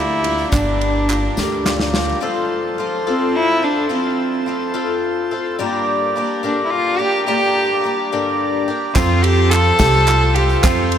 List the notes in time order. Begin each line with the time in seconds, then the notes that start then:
Already playing: D2 G2 D3 G3 A#3 D4 E4 F4 G4 D5 A#5
0.24 G3 A#3 D4 F4 G4, clap, ride
0.38 clap, tambourine
0.51 G1 G2 D3 G3 A#3 D4 G4, kick, clap, ride, tambourine
0.81 ride
1.09 G3 A#3 D4 F4 G4, clap, ride, tambourine
1.37 D2 G2 D3 G3 A#3 D4 G4, snare, tambourine
1.53 clap
1.65 F4, snare, clap
1.80 snare
1.93 G3 A#3 D4 F4 G4, snare, tambourine
2.10 clap
2.21 F3 C4 F4 A4 C5 A5
2.78 F3 C4 F4 A4
3.07 F3 C4 F4 A4
3.36 E4
3.62 C4 D4 F4 A4
3.89 F3 C4 F4 A4
4.46 F3 C4 F4 A4
4.74 F3 C4 F4 A4
5.31 C4 F4 A4
5.59 G2 D3 G3 A#3 D4 G4 D5 A#5
6.16 G3 A#3 D4 G4
6.43 G2 D3 G3 A#3 D4 G4
6.64 E4
6.71 F4
6.99 G3 A#3 D4 G4
7.26 G2 D3 G3 A#3 D4 G4
7.84 G3 A#3 D4 G4
8.12 G2 D3 G3 A#3 D4 G4
8.68 G3 A#3 D4 G4
8.94 F2 F3 C4 F4 A4 C5 A5, kick, clap, ride, tambourine
9.23 G4, ride
9.50 F3 C4 F4 A4, clap, ride, tambourine
9.66 clap
9.79 C2 F3 C4 F4 G4 A4, kick, snare, ride, tambourine
9.93 tambourine
10.08 F4, clap, ride
10.34 F4 G4 A4, clap, ride
10.39 C4
10.49 clap, tambourine
10.63 F2 F3 C4 F4 A4, kick, clap, ride, tambourine
10.92 ride